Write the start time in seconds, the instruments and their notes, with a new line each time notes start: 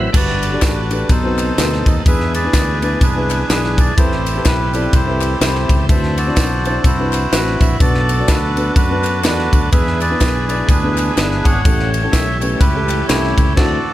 Already playing: tonewheel organ E3 F#3 B4, grand piano B4 E5, melodica E5
0.12 fingered electric bass G1, grand piano G2 D4 F#4 G4 A4 B4, tonewheel organ G3 D4 F#4 A4, melodica F#4 B4 D5, kick, crash, tambourine
0.28 snare
0.42 ride, tambourine
0.52 grand piano D4 F#4 G4 A4 D5
0.62 fingered electric bass A1, melodica D4 F#4 B4, kick, snare, clap, ride, tambourine
0.91 grand piano D4 F#4 G4 A4 B4, ride, tambourine
1.09 fingered electric bass B1, grand piano B2, tonewheel organ F#3 C4 D#4, melodica D#4 A4 C5, kick, ride, tambourine
1.24 grand piano C4 D#4 F#4 A4 B4
1.38 clap, ride, tambourine
1.58 fingered electric bass D2, grand piano C4 D#4 F#4 A4 B4, melodica C5, snare, clap, ride, tambourine
1.72 snare
1.86 fingered electric bass D#2, melodica D#5, kick, ride, tambourine
2.05 fingered electric bass E2, tonewheel organ E3 G#3 D4 G#4, grand piano E3 B3 D4 E4 G#4 B4, melodica G#4 B4 E5, kick, ride, tambourine
2.20 snare
2.34 melodica G#4 B4 D5, ride, tambourine
2.44 grand piano B3 D4 E4 G#4 B4
2.53 fingered electric bass D2, kick, snare, clap, ride, tambourine
2.82 grand piano B3 D4 E4 G#4 B4, melodica D5, ride, tambourine
3.01 fingered electric bass C2, melodica D4 G#4 B4, kick, ride, tambourine
3.15 grand piano B3 D4 E4 G#4 B4
3.30 clap, ride, tambourine
3.50 fingered electric bass B1, grand piano B3 D4 E4 G#4 D5, melodica B4, snare, clap, ride, tambourine
3.64 snare
3.78 melodica D5, kick, ride, tambourine
3.97 fingered electric bass A1, grand piano A2 C4 E4 G4 A4 B4, tonewheel organ A3 C4 G4, melodica E4 G4 C5, kick, ride, tambourine
4.12 snare
4.26 ride, tambourine
4.36 grand piano C4 E4 G4 A4 B4
4.45 fingered electric bass B1, melodica E4 G4 B4, kick, snare, clap, ride, tambourine
4.73 grand piano C4 E4 G4 A4 D5, ride, tambourine
4.93 fingered electric bass C2, melodica E4 G4 C5, kick, ride, tambourine
5.07 grand piano C4 E4 G4 A4 B4
5.21 clap, ride, tambourine
5.41 fingered electric bass C2, grand piano C4 E4 G4 A4 B5, melodica E4 G4 C5, snare, clap, ride, tambourine
5.55 snare
5.69 fingered electric bass C#2, kick, ride, tambourine
5.89 fingered electric bass D2, grand piano D3 C4 D4 E4 F#4 B4, tonewheel organ D4 F#4, melodica A4 C5 E5, kick, ride, tambourine
6.03 snare
6.17 melodica F#4 A4 D5, ride, tambourine
6.27 grand piano C4 D4 E4 F#4 D5
6.37 fingered electric bass B1, kick, snare, clap, ride, tambourine
6.65 grand piano C4 D4 E4 F#4 C5, melodica D5, ride, tambourine
6.84 fingered electric bass C2, melodica E4 F#4 C5, kick, ride, tambourine
6.99 grand piano C4 D4 E4 F#4 B4
7.13 clap, ride, tambourine
7.32 fingered electric bass A1, grand piano C4 D4 E4 F#4 B4, melodica B4, snare, clap, ride, tambourine
7.47 snare
7.61 fingered electric bass A#1, melodica E5, kick, ride, tambourine
7.80 fingered electric bass B1, grand piano B2 B3 D4 F#4 A4 B4, tonewheel organ F#3 A3 A4, melodica F#4 A4 D5, kick, ride, tambourine
7.94 snare
8.09 ride, tambourine
8.18 grand piano B3 D4 F#4 A4 D5
8.28 fingered electric bass D2, melodica D4 F#4 B4, kick, snare, clap, ride, tambourine
8.56 grand piano B3 D4 F#4 A4 B4, ride, tambourine
8.75 fingered electric bass F#2, melodica D4 F#4 B4, kick, ride, tambourine
8.91 grand piano B3 D4 F#4 A4 B4
9.04 clap, ride, tambourine
9.24 fingered electric bass E2, grand piano B3 D4 F#4 A4 D5, melodica D4 F#4 B4, snare, clap, ride, tambourine
9.39 snare
9.53 fingered electric bass D2, kick, ride, tambourine
9.72 fingered electric bass E2, tonewheel organ E3 G#3 B3 G#4, grand piano E3 B3 D4 E4 G#4 B4, melodica G#4 B4 E5, kick, ride, tambourine
9.87 snare
10.00 melodica G#4 B4 D5, ride, tambourine
10.10 grand piano B3 D4 E4 G#4 B4
10.21 fingered electric bass B1, kick, snare, clap, ride, tambourine
10.48 grand piano B3 D4 E4 G#4 D5, melodica D5, ride, tambourine
10.69 fingered electric bass D2, melodica D4 G#4 B4, kick, ride, tambourine
10.83 grand piano B3 D4 E4 G#4 B4
10.97 clap, ride, tambourine
11.16 fingered electric bass G1, grand piano B3 D4 E4 G#4 D5, melodica B4, snare, clap, ride, tambourine
11.31 snare
11.44 fingered electric bass G#1, melodica C#5 F#5, kick, ride, tambourine
11.64 fingered electric bass A1, grand piano A2 A3 C#4 E4 G4 A4, tonewheel organ G3 A3 C#4 G4, kick, ride, tambourine
11.79 snare
11.94 ride, tambourine
12.02 grand piano A3 C#4 E4 G4 A4
12.12 fingered electric bass B1, melodica E5, kick, snare, clap, ride, tambourine
12.40 grand piano A3 C#4 E4 G4 B4, melodica C#5, ride, tambourine
12.60 fingered electric bass C#2, melodica E4 G4 B4, kick, ride, tambourine
12.75 grand piano A3 C#4 E4 G4 A4
12.89 clap, ride, tambourine
13.07 fingered electric bass C2, grand piano A3 C#4 E4 G4 A4, melodica E4 G4 C#5, snare, clap, ride, tambourine
13.23 snare
13.38 fingered electric bass C#2, kick, ride, tambourine
13.56 fingered electric bass D2, grand piano D3 C4 D4 E4 F#4 A4, tonewheel organ C4 D4 F#4, melodica F#4 A4 D5, kick, snare, crash